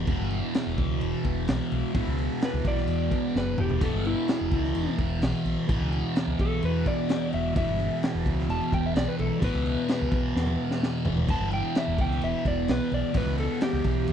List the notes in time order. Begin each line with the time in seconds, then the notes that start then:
Already playing: E3
0.06 E1 E2 B2, kick, crash
0.11 E3
0.20 G1
0.30 crash
0.54 snare, crash
0.66 E1
0.78 C#2, kick, crash
1.01 E1, crash
1.24 E1, kick, crash
1.48 B1, snare, crash
1.72 B1, crash
1.93 A1 E2 B2 E3, kick, crash
2.07 C#2
2.18 crash
2.41 B4, snare, crash
2.54 C#2
2.65 B1 D5, kick, crash
2.78 snare
2.88 E2, crash
3.11 kick, crash
3.35 F#1 B4, snare
3.58 E1 G4, mid tom
3.70 floor tom
3.80 E1 E2 B2 E3 A4, kick, splash, crash
3.94 G1
4.05 E4, crash
4.28 snare, crash
4.41 E1
4.51 C#2, kick, crash
4.64 snare
4.75 E1, crash
4.98 E1, kick, crash
5.22 B1, snare, crash
5.45 B1, crash
5.67 A1 E2 B2 E3, kick, crash
5.81 C#2
5.92 crash
6.16 snare, crash
6.27 C#2
6.39 B1 A4, kick, crash
6.62 E2 B4, crash
6.86 D5, kick, crash
7.09 snare, crash
7.33 E1 E5, crash
7.54 E1 E2 B2 E5, kick, crash
7.58 E3
7.68 G1
7.79 crash
8.03 snare, crash
8.14 E1
8.26 C#2, kick, crash
8.39 snare
8.49 E1 A5, crash
8.72 E1 G5, kick, crash
8.86 E5
8.96 B1 D5, snare, crash
9.08 B4
9.19 B1 A4, crash
9.40 A1 E2 B2, kick, crash
9.44 E3 B4
9.54 C#2
9.66 crash
9.88 snare, crash
10.01 C#2
10.11 B1, kick, crash
10.35 E2, snare
10.47 high tom
10.71 snare
10.83 snare
11.05 E1, floor tom
11.17 floor tom
11.27 E1 E2 B2 E3 A5, kick, crash
11.40 G1
11.51 G5, crash
11.75 E5, snare, crash
11.87 E1
11.98 C#2 G5, kick, crash
12.11 snare
12.21 E1 E5, crash
12.45 E1 D5, kick, crash
12.68 B1 B4, snare, crash
12.92 B1 D5, crash
13.13 A1 E2 B2, kick, crash
13.17 E3 B4
13.26 C#2
13.38 A4, crash
13.61 G4, snare, crash
13.73 C#2
13.84 B1, kick, crash
14.07 E2, crash